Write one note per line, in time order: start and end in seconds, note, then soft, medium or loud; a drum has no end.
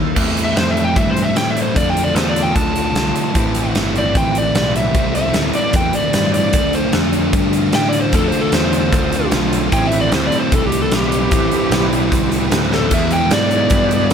0.00 0.15 D#2 medium
0.00 0.16 D#3 medium
0.00 0.13 E4 medium
0.00 0.13 A4 medium
0.00 0.13 C5 medium
0.15 0.55 E2 medium
0.15 1.75 A2 medium
0.15 1.74 E3 medium
0.15 1.75 A3 medium
0.15 1.74 C4 medium
0.15 1.76 C4 medium
0.15 1.74 E4 medium
0.15 1.76 E4 loud
0.15 1.74 G4 medium
0.15 1.74 B4 medium
0.15 kick loud
0.15 crash loud
0.37 closed hi-hat medium
0.45 0.57 E5 medium
0.56 0.95 F2 medium
0.56 0.70 C5 medium
0.56 snare loud
0.56 closed hi-hat medium
0.71 0.83 E5 medium
0.77 closed hi-hat medium
0.85 0.97 G5 medium
0.96 1.35 G2 medium
0.96 1.10 E5 medium
0.96 kick loud
0.96 closed hi-hat medium
1.10 1.23 C5 medium
1.17 closed hi-hat medium
1.22 1.36 E5 medium
1.36 1.75 A2 medium
1.36 1.49 G5 medium
1.36 snare loud
1.36 closed hi-hat medium
1.51 1.62 E5 medium
1.57 closed hi-hat medium
1.62 1.76 C5 medium
1.74 2.14 F2 medium
1.74 3.34 D3 medium
1.74 3.35 A3 medium
1.74 3.33 C4 medium
1.74 3.34 D4 medium
1.74 3.33 F4 medium
1.74 3.35 F4 medium
1.74 3.33 A4 medium
1.74 1.89 D5 medium
1.74 kick loud
1.74 closed hi-hat medium
1.90 2.03 G5 medium
1.97 closed hi-hat medium
2.04 2.16 D5 medium
2.15 2.54 E2 loud
2.15 2.29 C5 medium
2.15 snare loud
2.15 closed hi-hat medium
2.29 2.42 D5 medium
2.36 closed hi-hat medium
2.43 2.56 G5 medium
2.55 2.94 D2 medium
2.55 3.72 A5 medium
2.55 kick loud
2.55 closed hi-hat loud
2.76 closed hi-hat medium
2.94 3.14 C2 medium
2.94 snare loud
2.94 closed hi-hat medium
3.15 muted picked electric bass stroke soft
3.15 closed hi-hat medium
3.34 3.74 A1 medium
3.34 4.92 A2 medium
3.34 4.92 E3 medium
3.34 4.94 A3 medium
3.34 4.94 C4 medium
3.34 6.51 C4 medium
3.34 6.51 E4 medium
3.34 4.94 E4 loud
3.34 6.51 G4 medium
3.34 6.51 B4 medium
3.34 kick loud
3.34 closed hi-hat medium
3.55 closed hi-hat medium
3.74 4.14 G1 medium
3.74 snare loud
3.74 closed hi-hat medium
3.95 4.16 D5 loud
3.95 closed hi-hat soft
4.15 4.54 A1 medium
4.15 4.36 G5 medium
4.15 kick loud
4.15 closed hi-hat medium
4.35 4.75 D5 medium
4.35 closed hi-hat medium
4.54 4.93 B1 medium
4.54 snare loud
4.54 closed hi-hat medium
4.76 5.14 E5 loud
4.76 closed hi-hat medium
4.93 5.33 C2 medium
4.93 6.52 A2 medium
4.93 6.52 E3 medium
4.93 6.54 A3 medium
4.93 6.55 C4 medium
4.93 6.53 E4 loud
4.93 kick loud
4.93 closed hi-hat medium
5.15 5.35 E5 medium
5.15 closed hi-hat medium
5.34 5.53 D2 medium
5.34 snare medium
5.34 closed hi-hat medium
5.53 5.74 D5 medium
5.53 muted picked electric bass stroke soft
5.53 closed hi-hat medium
5.73 5.92 E2 medium
5.73 5.95 G5 medium
5.73 kick loud
5.73 closed hi-hat medium
5.93 6.33 D5 medium
5.93 muted picked electric bass stroke soft
5.93 closed hi-hat medium
6.13 6.53 G2 medium
6.13 snare loud
6.13 closed hi-hat medium
6.34 6.73 D5 medium
6.34 closed hi-hat medium
6.53 6.93 D2 medium
6.53 8.11 D3 medium
6.53 8.12 A3 medium
6.53 9.70 C4 medium
6.53 8.12 D4 medium
6.53 9.70 F4 medium
6.53 8.13 F4 medium
6.53 9.70 A4 medium
6.53 kick loud
6.53 closed hi-hat loud
6.73 6.94 C5 loud
6.73 closed hi-hat medium
6.93 7.32 F2 medium
6.93 snare loud
6.93 closed hi-hat medium
7.13 closed hi-hat medium
7.33 7.72 G2 medium
7.33 kick loud
7.33 closed hi-hat medium
7.53 closed hi-hat medium
7.73 8.12 A2 medium
7.73 7.87 G5 loud
7.73 snare loud
7.73 closed hi-hat medium
7.89 8.01 D5 medium
7.89 closed hi-hat medium
8.01 8.14 C5 medium
8.12 8.32 F2 medium
8.12 9.71 D3 medium
8.12 9.72 A3 loud
8.12 9.71 D4 medium
8.12 9.71 F4 medium
8.12 8.27 A4 medium
8.12 kick loud
8.12 closed hi-hat medium
8.28 8.40 C5 medium
8.32 muted picked electric bass stroke soft
8.32 closed hi-hat medium
8.41 8.53 A4 medium
8.52 8.91 E2 medium
8.52 9.31 C5 medium
8.52 snare medium
8.52 closed hi-hat medium
8.73 closed hi-hat medium
8.93 9.31 D2 medium
8.93 kick loud
8.93 closed hi-hat medium
9.12 closed hi-hat medium
9.32 9.71 B1 medium
9.32 snare loud
9.32 closed hi-hat medium
9.53 closed hi-hat medium
9.72 10.11 A1 medium
9.72 11.29 A2 medium
9.72 11.31 E3 medium
9.72 11.31 A3 medium
9.72 11.31 C4 medium
9.72 9.86 C#4 medium
9.72 11.33 E4 medium
9.72 9.86 F4 medium
9.72 9.86 G#4 medium
9.72 9.86 C5 medium
9.72 9.86 G5 loud
9.72 kick loud
9.72 closed hi-hat medium
9.87 12.89 C4 medium
9.87 12.89 E4 medium
9.87 12.89 G4 medium
9.87 12.89 B4 medium
9.87 9.99 E5 loud
9.92 closed hi-hat medium
10.01 10.13 D5 medium
10.12 10.31 D2 medium
10.12 10.26 C5 medium
10.12 snare loud
10.12 closed hi-hat medium
10.27 10.39 D5 loud
10.32 muted picked electric bass stroke soft
10.32 closed hi-hat medium
10.40 10.52 C5 medium
10.52 10.91 C2 medium
10.52 10.66 A4 medium
10.52 kick loud
10.52 closed hi-hat loud
10.67 10.79 G4 medium
10.72 closed hi-hat medium
10.82 10.93 A4 medium
10.92 11.30 B1 medium
10.92 11.06 G4 medium
10.92 snare loud
10.92 closed hi-hat medium
11.08 11.84 G4 medium
11.08 closed hi-hat medium
11.30 11.50 A1 medium
11.30 12.89 A2 medium
11.30 12.89 E3 medium
11.30 12.90 A3 medium
11.30 12.90 C4 medium
11.30 12.91 E4 medium
11.30 kick loud
11.30 closed hi-hat medium
11.52 muted picked electric bass stroke soft
11.52 closed hi-hat medium
11.71 12.10 B1 medium
11.71 snare loud
11.71 closed hi-hat medium
11.93 closed hi-hat medium
12.12 12.50 C2 medium
12.12 kick loud
12.12 closed hi-hat medium
12.32 closed hi-hat medium
12.51 12.90 D2 medium
12.51 snare loud
12.51 closed hi-hat medium
12.62 snare soft
12.72 12.92 A4 loud
12.72 snare medium
12.90 13.30 E2 medium
12.90 14.13 E3 medium
12.90 14.13 G#3 medium
12.90 14.13 B3 medium
12.90 14.13 D4 medium
12.90 14.13 E4 medium
12.90 14.13 G4 medium
12.90 14.13 G#4 medium
12.90 14.13 B4 medium
12.90 13.12 E5 loud
12.90 kick loud
12.90 closed hi-hat medium
12.90 splash medium
13.11 13.32 G5 medium
13.11 closed hi-hat medium
13.31 13.70 G#2 medium
13.31 14.09 D5 loud
13.31 snare loud
13.31 closed hi-hat medium
13.51 closed hi-hat medium
13.70 14.09 G2 medium
13.70 kick loud
13.70 closed hi-hat loud
13.91 closed hi-hat medium
14.10 closed hi-hat medium